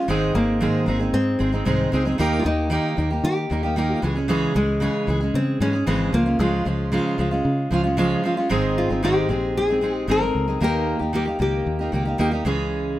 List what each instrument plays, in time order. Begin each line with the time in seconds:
0.08 fingered electric bass G#1, steel-string acoustic guitar G#2 D#3 G#3 C4 D#4 G#4
0.35 fingered electric bass G#1, steel-string acoustic guitar G#3 C4 D#4 G#4, nylon-string guitar A#3
0.60 steel-string acoustic guitar G#2 D#3 G#3 C4 D#4 G#4
0.86 fingered electric bass G#1, steel-string acoustic guitar G#3 C4 D#4 G#4
0.99 steel-string acoustic guitar G#3 C4 D#4 G#4
1.13 fingered electric bass G#2, nylon-string guitar C4
1.39 fingered electric bass G#1, steel-string acoustic guitar G#3 C4 D#4 G#4
1.52 steel-string acoustic guitar G#3 C4 D#4 G#4
1.65 fingered electric bass C2, steel-string acoustic guitar G#2 D#3 G#3 C4 D#4 G#4
1.92 fingered electric bass C#2, steel-string acoustic guitar G#3 C4 D#4 G#4
2.05 steel-string acoustic guitar G#3 C4 D#4 G#4
2.18 fingered electric bass D#2, steel-string acoustic guitar D#3 A#3 D#4 G4
2.39 nylon-string guitar F4
2.44 fingered electric bass D#2, steel-string acoustic guitar D#3 A#3 D#4 G4, nylon-string guitar D#4
2.70 steel-string acoustic guitar D#3 A#3 D#4 G4
2.97 fingered electric bass D#2, steel-string acoustic guitar D#3 A#3 D#4 G4
3.10 steel-string acoustic guitar A#3 D#4 G4
3.24 fingered electric bass D#3, nylon-string guitar G4
3.50 fingered electric bass D#2, steel-string acoustic guitar D#3 A#3 D#4 G4
3.63 steel-string acoustic guitar A#3 D#4 G4
3.76 steel-string acoustic guitar D#3 A#3 D#4 G4
3.95 nylon-string guitar F4
4.02 fingered electric bass C#2, steel-string acoustic guitar E3 G#3 C#4 G#4
4.15 steel-string acoustic guitar G#3 C#4 G#4
4.28 steel-string acoustic guitar C#3 E3 G#3 C#4 G#4
4.54 fingered electric bass C#2, steel-string acoustic guitar E3 G#3 C#4 G#4, nylon-string guitar G#3
4.80 steel-string acoustic guitar C#3 E3 G#3 C#4 G#4
5.07 fingered electric bass C#2, steel-string acoustic guitar E3 G#3 C#4 G#4
5.21 steel-string acoustic guitar G#3 C#4 G#4
5.34 fingered electric bass C#3, nylon-string guitar C4
5.60 fingered electric bass G#2, steel-string acoustic guitar E3 G#3 C#4 G#4, nylon-string guitar C#4
5.73 steel-string acoustic guitar G#3 C#4 G#4
5.87 fingered electric bass G#1, steel-string acoustic guitar C#3 E3 G#3 C#4 G#4, nylon-string guitar C4
6.13 fingered electric bass C#2, steel-string acoustic guitar F3 G#3 C#4 F4, nylon-string guitar A#3
6.26 steel-string acoustic guitar G#3 C#4 F4
6.39 fingered electric bass C#2, steel-string acoustic guitar C#3 F3 G#3 C#4 F4, nylon-string guitar G#3
6.65 fingered electric bass C#2, steel-string acoustic guitar F3 G#3 C#4 F4
6.92 steel-string acoustic guitar C#3 F3 G#3 C#4 F4
7.18 fingered electric bass C#2, steel-string acoustic guitar F3 G#3 C#4 F4
7.31 steel-string acoustic guitar G#3 C#4 F4
7.45 fingered electric bass C#3
7.71 fingered electric bass C#2, steel-string acoustic guitar F3 G#3 C#4 F4
7.83 steel-string acoustic guitar G#3 C#4 F4
7.97 steel-string acoustic guitar C#3 F3 G#3 C#4 F4
8.23 steel-string acoustic guitar F3 G#3 C#4 F4
8.37 steel-string acoustic guitar G#3 C#4 F4
8.49 fingered electric bass G#1, steel-string acoustic guitar G#2 D#3 G#3 C4 D#4 G#4
8.78 nylon-string guitar F4
8.89 fingered electric bass G#1, steel-string acoustic guitar G#3 C4 D#4 G#4
9.03 steel-string acoustic guitar G#2 D#3 G#3 C4 D#4 G#4, nylon-string guitar G4
9.29 fingered electric bass A#1, steel-string acoustic guitar G#3 C4 D#4 G#4
9.57 nylon-string guitar G#4
9.68 steel-string acoustic guitar G#3 C4 D#4 G#4
9.81 steel-string acoustic guitar G#3 C4 D#4 G#4
9.92 nylon-string guitar G4
10.08 fingered electric bass G#1, steel-string acoustic guitar G#2 D#3 G#3 C4 D#4 G#4, nylon-string guitar A#4
10.20 steel-string acoustic guitar G#3 C4 D#4 G#4
10.35 fingered electric bass C#2
10.48 steel-string acoustic guitar G#3 C4 D#4 G#4
10.60 fingered electric bass D#2, steel-string acoustic guitar D#3 A#3 D#4 G4, nylon-string guitar A#4
10.99 fingered electric bass D#2, steel-string acoustic guitar A#3 D#4 G4
11.13 steel-string acoustic guitar D#3 A#3 D#4 G4, nylon-string guitar G4
11.25 steel-string acoustic guitar A#3 D#4 G4
11.39 fingered electric bass C#2, steel-string acoustic guitar D#3 A#3 D#4 G4, nylon-string guitar G4
11.66 fingered electric bass D#2
11.79 steel-string acoustic guitar A#3 D#4 G4
11.92 fingered electric bass C#2, steel-string acoustic guitar D#3 A#3 D#4 G4
12.05 steel-string acoustic guitar A#3 D#4 G4
12.18 fingered electric bass D#2, steel-string acoustic guitar D#3 A#3 D#4 G4
12.33 steel-string acoustic guitar A#3 D#4
12.45 fingered electric bass C#2, steel-string acoustic guitar C#3 E3 G#3 C#4 G#4